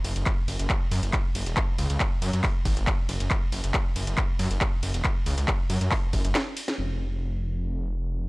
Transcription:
0.04 detuned saw bass F#1, open hi-hat, ride
0.16 detuned saw bass F#1, closed hi-hat
0.26 kick, clap, closed hi-hat
0.48 detuned saw bass F#1, open hi-hat, ride
0.59 detuned saw bass F#1, closed hi-hat
0.70 kick, clap, closed hi-hat
0.91 detuned saw bass F#2, open hi-hat, ride
1.03 detuned saw bass F#1, closed hi-hat
1.13 kick, clap, closed hi-hat
1.35 detuned saw bass F#1, open hi-hat, ride
1.46 detuned saw bass E1, closed hi-hat
1.57 kick, clap, closed hi-hat
1.78 detuned saw bass C#2, open hi-hat, ride
1.90 detuned saw bass C#2, closed hi-hat
2.00 kick, clap, closed hi-hat
2.22 detuned saw bass F#2, open hi-hat, ride
2.33 detuned saw bass F#2, closed hi-hat
2.44 kick, clap, open hi-hat
2.65 detuned saw bass G#1, kick, open hi-hat, ride
2.77 detuned saw bass G#1, closed hi-hat
2.87 kick, clap, closed hi-hat
3.09 detuned saw bass F#1, open hi-hat, ride
3.20 detuned saw bass F#1, closed hi-hat
3.31 kick, clap, closed hi-hat
3.52 detuned saw bass F#1, open hi-hat, ride
3.64 detuned saw bass F#1, closed hi-hat
3.74 kick, clap, closed hi-hat
3.96 detuned saw bass F#1, open hi-hat, ride
4.07 detuned saw bass F#1, closed hi-hat
4.18 kick, clap, closed hi-hat
4.39 detuned saw bass F#2, open hi-hat, ride
4.51 detuned saw bass F#1, closed hi-hat
4.61 kick, clap, closed hi-hat
4.83 detuned saw bass F#1, open hi-hat, ride
4.94 detuned saw bass E1, closed hi-hat
5.04 kick, clap, closed hi-hat
5.26 detuned saw bass C#2, open hi-hat, ride
5.38 detuned saw bass C#2, closed hi-hat
5.48 kick, clap, closed hi-hat
5.70 detuned saw bass F#2, open hi-hat, ride
5.81 detuned saw bass F#2, closed hi-hat
5.91 kick, clap, open hi-hat
6.13 detuned saw bass F#1, kick, open hi-hat, ride
6.25 detuned saw bass F#1, closed hi-hat
6.35 snare, clap, closed hi-hat
6.57 open hi-hat, ride
6.68 snare, closed hi-hat
6.78 detuned saw bass F1

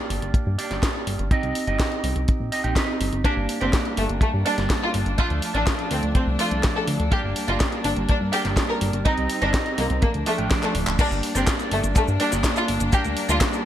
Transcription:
Already playing: clean electric guitar A#3 D4 G4 D5
0.10 analog synth bass G1, open hi-hat
0.22 analog synth bass G1, closed hi-hat
0.34 kick, closed hi-hat
0.46 analog synth bass G2
0.58 clean electric guitar A#3 D4 G4 D5, open hi-hat
0.71 analog synth bass G1, snare, closed hi-hat
0.83 kick, snare, closed hi-hat
1.07 analog synth bass G1, open hi-hat
1.19 analog synth bass G1, closed hi-hat
1.31 clean electric guitar C4 D#4 G4 D#5, kick, closed hi-hat
1.43 analog synth bass C2, closed hi-hat
1.55 open hi-hat
1.67 analog synth bass G1, clean electric guitar C4 D#4 G4 D#5, closed hi-hat
1.80 kick, snare, closed hi-hat
1.92 closed hi-hat
2.04 analog synth bass C2, open hi-hat
2.16 analog synth bass C2, closed hi-hat
2.28 kick, closed hi-hat
2.40 analog synth bass A#1
2.52 clean electric guitar C4 D#4 G4 D#5, open hi-hat
2.64 analog synth bass A#1, clean electric guitar C4 D#4 G4 G5, closed hi-hat
2.76 clean electric guitar C4 D#4 G4 D#5, kick, snare, closed hi-hat
3.01 analog synth bass G1, open hi-hat
3.13 analog synth bass G1, closed hi-hat
3.24 string section G3 A#3 D4, clean electric guitar A#3 D4 G4 D5, violin section D4, kick, closed hi-hat
3.37 analog synth bass G1
3.49 open hi-hat
3.61 analog synth bass G1, clean electric guitar A#3 D4 G4 D5, violin section C4, closed hi-hat
3.73 kick, snare, closed hi-hat
3.85 closed hi-hat
3.97 analog synth bass G1, violin section A3, open hi-hat
4.09 analog synth bass G1, closed hi-hat
4.21 violin section A3, kick, closed hi-hat
4.34 analog synth bass G2
4.45 clean electric guitar A#3 D4 G4 D5, violin section D4, open hi-hat
4.58 analog synth bass G1, snare, closed hi-hat
4.70 kick, snare, closed hi-hat
4.82 violin section F4
4.94 analog synth bass G1, open hi-hat
5.06 analog synth bass G1, closed hi-hat
5.18 string section F3 A3, clean electric guitar A3 D4 F4 D5, violin section F4, kick, closed hi-hat
5.30 analog synth bass D2, closed hi-hat
5.42 open hi-hat
5.54 analog synth bass A1, clean electric guitar A3 D4 F4 D5, violin section D4, closed hi-hat
5.67 kick, snare, closed hi-hat
5.79 closed hi-hat
5.91 analog synth bass D2, violin section C4, open hi-hat
6.03 analog synth bass D2, closed hi-hat
6.15 violin section C4, kick, closed hi-hat
6.27 analog synth bass C2
6.39 clean electric guitar A3 D4 F4 D5, violin section F4, open hi-hat
6.51 analog synth bass C2, closed hi-hat
6.63 kick, snare, closed hi-hat
6.75 violin section A4
6.88 analog synth bass D2, open hi-hat
7.00 analog synth bass D2, closed hi-hat
7.11 string section G3 A#3, clean electric guitar A#3 D4 G4 D5, violin section G4, kick, closed hi-hat
7.24 analog synth bass G1
7.36 open hi-hat
7.48 analog synth bass G1, clean electric guitar A#3 D4 G4 D5, violin section F4, closed hi-hat
7.60 kick, snare, closed hi-hat
7.72 closed hi-hat
7.84 analog synth bass G1, violin section D4, open hi-hat
7.96 analog synth bass G1, closed hi-hat
8.09 violin section D4, kick, closed hi-hat
8.21 analog synth bass G2
8.33 clean electric guitar A#3 D4 G4 D5, violin section G4, open hi-hat
8.45 analog synth bass G1, snare, closed hi-hat
8.56 kick, snare, closed hi-hat
8.69 violin section A#4
8.81 analog synth bass G1, open hi-hat
8.93 analog synth bass G1, closed hi-hat
9.05 clean electric guitar C4 D#4 G4 D#5, string section C4 D#4, violin section D#4, kick, closed hi-hat
9.18 analog synth bass C2, closed hi-hat
9.30 open hi-hat
9.41 analog synth bass G1, clean electric guitar C4 D#4 G4 D#5, violin section D4, closed hi-hat
9.54 kick, snare, closed hi-hat
9.66 closed hi-hat
9.78 analog synth bass C2, violin section A#3, snare, open hi-hat
9.90 analog synth bass C2, closed hi-hat
10.02 string section F3 A3 D4, violin section A#3, kick, closed hi-hat
10.14 analog synth bass D2, closed hi-hat
10.26 violin section A3, clean electric guitar A3 D4 F4 D5, open hi-hat
10.38 analog synth bass A1, clean electric guitar A3 D4 F4 G5, closed hi-hat
10.50 clean electric guitar A3 D4 F4 D5, kick, snare, closed hi-hat
10.63 violin section A3, clap
10.75 analog synth bass D1, open hi-hat
10.87 analog synth bass D1, clap, closed hi-hat
10.99 string section G3 A#3 D4, clean electric guitar A#3 D4 G4 D5, violin section D4, kick, closed hi-hat, crash, cabasa
11.11 analog synth bass G1, closed hi-hat, cabasa
11.23 open hi-hat
11.35 analog synth bass G1, clean electric guitar A#3 D4 G4 D5, violin section C4, closed hi-hat, cabasa
11.47 kick, snare, clap, closed hi-hat, cabasa
11.59 closed hi-hat, cabasa
11.71 analog synth bass G1, violin section A3, open hi-hat
11.84 analog synth bass G1, closed hi-hat, cabasa
11.96 violin section A3, kick, clap, closed hi-hat, cabasa
12.08 analog synth bass G2, cabasa
12.20 clean electric guitar A#3 D4 G4 D5, violin section D4, open hi-hat
12.32 analog synth bass G1, snare, closed hi-hat, cabasa
12.44 kick, snare, clap, closed hi-hat, cabasa
12.56 violin section F4, closed hi-hat, cabasa
12.68 analog synth bass G1, open hi-hat
12.80 analog synth bass G1, closed hi-hat, cabasa
12.92 clean electric guitar A#3 D4 G4 D5, violin section G4, kick, closed hi-hat, cabasa
13.05 analog synth bass D2, closed hi-hat, cabasa
13.17 open hi-hat
13.29 analog synth bass D2, clean electric guitar A#3 D4 G4 D5, violin section F4, closed hi-hat, cabasa
13.41 kick, snare, clap, closed hi-hat, cabasa
13.53 closed hi-hat, cabasa

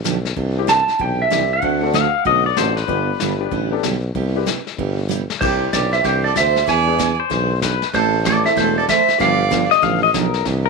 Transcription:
0.04 tuba B1, steel-string acoustic guitar D3 F3 B3 D4 G4, snare, hi-hat pedal
0.25 snare
0.36 tuba C2, steel-string acoustic guitar C3 E3 D4 G4, brush sweep, kick
0.57 upright piano C4 D4 E4 G4
0.67 steel-string acoustic guitar C3 E3 D4 G4, electric slide guitar A5, snare, hi-hat pedal
0.88 snare
0.99 tuba B1, steel-string acoustic guitar C3 E3 D4 G4, electric slide guitar G5, brush sweep, kick
1.22 electric slide guitar E5
1.30 tuba C2, steel-string acoustic guitar C3 E3 D4 G4, upright piano C4 D4 E4 G4, snare, hi-hat pedal
1.53 electric slide guitar F#5
1.62 tuba D2, steel-string acoustic guitar D3 A3 C4 F#4 A4, brush sweep, kick
1.81 upright piano C4 D4 F#4 A4
1.93 steel-string acoustic guitar D3 A3 C4 F#4 A4, pedal steel guitar F5, snare, hi-hat pedal
2.25 tuba B1, steel-string acoustic guitar D3 A3 C4 F#4 A4, pedal steel guitar D#5, brush sweep, kick
2.46 pedal steel guitar D5
2.55 tuba A1, steel-string acoustic guitar D3 A3 C4 F#4 A4, upright piano C4 D4 F#4 A4, pedal steel guitar C5, snare, hi-hat pedal
2.77 pedal steel guitar B4, snare
2.87 tuba G1, steel-string acoustic guitar D3 G3 B3 D4 G4, upright piano B3 D4 G4 B4, brush sweep, kick
3.20 tuba G1, steel-string acoustic guitar D3 G3 B3 D4 G4, snare, hi-hat pedal
3.39 upright piano B3 D4 G4 D5
3.51 tuba A1, steel-string acoustic guitar D3 G3 B3 D4 G4, brush sweep, kick
3.71 upright piano B3 D4 G4 A4
3.83 tuba B1, steel-string acoustic guitar D3 G3 B3 D4 G4, snare, hi-hat pedal
4.15 tuba C2, steel-string acoustic guitar C3 G3 B3 E4 G4, brush sweep, kick
4.35 upright piano C4 E4 G4 B4
4.46 steel-string acoustic guitar C3 G3 B3 E4 G4, snare, hi-hat pedal
4.67 snare
4.78 tuba G1, steel-string acoustic guitar C3 G3 B3 E4 G4, brush sweep, kick
5.09 steel-string acoustic guitar C3 G3 B3 E4 G4, hi-hat pedal
5.30 snare
5.41 tuba C2, steel-string acoustic guitar C3 E3 D4 G4, upright piano G3 C4 D4 E4 G4, fiddle G4, electric slide guitar C5, brush sweep, kick, snare, crash
5.73 tuba B1, steel-string acoustic guitar C3 E3 D4 G4, fiddle G4, electric slide guitar D5, kick, snare, hi-hat pedal
5.93 fiddle C5, electric slide guitar E5, snare
6.03 tuba C2, steel-string acoustic guitar C3 E3 D4 G4, fiddle G4, electric slide guitar C5, brush sweep, kick, snare
6.24 fiddle A4, electric slide guitar D5
6.35 tuba D2, steel-string acoustic guitar C3 E3 D4 G4, fiddle C5, electric slide guitar E5, kick, snare, hi-hat pedal
6.56 snare
6.67 tuba E2, steel-string acoustic guitar E3 B3 D4 G#4, fiddle D5, electric slide guitar G#5, brush sweep, kick, snare
6.87 upright piano G#3 B3 D4 E4 G#4
6.99 steel-string acoustic guitar E3 B3 D4 G#4, kick, snare, hi-hat pedal
7.20 pedal steel guitar C5
7.30 tuba B1, steel-string acoustic guitar E3 B3 D4 G#4, brush sweep, kick, snare
7.62 steel-string acoustic guitar E3 B3 D4 G#4, pedal steel guitar B4, kick, snare, hi-hat pedal
7.82 snare
7.94 tuba A1, steel-string acoustic guitar E3 A3 C4 E4 A4, fiddle A4, electric slide guitar C5, brush sweep, kick, snare
8.25 steel-string acoustic guitar E3 A3 C4 E4 A4, fiddle A4, electric slide guitar D5, kick, snare, hi-hat pedal
8.44 upright piano E3 A3 C4 E4 A4, fiddle C5, electric slide guitar E5, snare
8.56 tuba E1, steel-string acoustic guitar E3 A3 C4 E4 A4, fiddle A4, electric slide guitar C5, brush sweep, kick, snare
8.77 fiddle A4, electric slide guitar D5
8.88 steel-string acoustic guitar E3 A3 C4 E4 A4, fiddle C5, electric slide guitar E5, kick, snare, hi-hat pedal
9.08 snare
9.19 tuba G1, steel-string acoustic guitar D3 F3 B3 D4 G4, upright piano G3 B3 D4 F4 G4, fiddle D5, electric slide guitar F5, brush sweep, kick, snare
9.50 steel-string acoustic guitar D3 F3 B3 D4 G4, upright piano G3 B3 D4 F4 G4, kick, snare, hi-hat pedal
9.71 pedal steel guitar D#5, snare
9.82 tuba A1, steel-string acoustic guitar D3 F3 B3 D4 G4, pedal steel guitar F5, brush sweep, kick, snare
10.03 pedal steel guitar D#5
10.14 tuba B1, steel-string acoustic guitar D3 F3 B3 D4 G4, pedal steel guitar A#4, kick, snare, hi-hat pedal
10.34 snare
10.45 tuba C2, steel-string acoustic guitar C3 E3 D4 G4, brush sweep, kick, snare
10.66 pedal steel guitar A#4

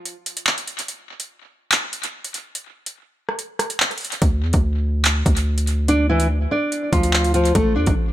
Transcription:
0.05 closed hi-hat
0.26 closed hi-hat
0.37 closed hi-hat
0.47 clap
0.58 closed hi-hat
0.68 closed hi-hat
0.79 closed hi-hat
0.88 closed hi-hat
1.20 closed hi-hat
1.72 clap, closed hi-hat
1.93 closed hi-hat
2.03 closed hi-hat
2.25 closed hi-hat
2.34 closed hi-hat
2.55 closed hi-hat
2.86 closed hi-hat
3.29 cross-stick
3.39 closed hi-hat
3.59 cross-stick, closed hi-hat
3.70 closed hi-hat
3.80 clap
3.91 closed hi-hat
3.98 closed hi-hat, open hi-hat
4.05 closed hi-hat
4.12 closed hi-hat
4.22 808-style bass D2, kick, closed hi-hat
4.43 808-style bass E2
4.53 808-style bass D2, kick, closed hi-hat
5.05 clap, closed hi-hat
5.26 808-style bass D2, kick, closed hi-hat
5.37 closed hi-hat
5.58 closed hi-hat
5.67 closed hi-hat
5.88 nylon-string guitar D4 D5, closed hi-hat
6.10 nylon-string guitar E3 E4
6.20 closed hi-hat
6.51 nylon-string guitar D4 D5
6.72 closed hi-hat
6.93 808-style bass D2, nylon-string guitar F3 F4, kick, closed hi-hat
7.03 closed hi-hat
7.13 clap
7.24 closed hi-hat
7.34 nylon-string guitar F3 F4, closed hi-hat
7.45 closed hi-hat
7.55 808-style bass A1, nylon-string guitar A3 A4, kick, closed hi-hat
7.76 808-style bass E2, nylon-string guitar D4 D5
7.86 808-style bass A1, kick, closed hi-hat

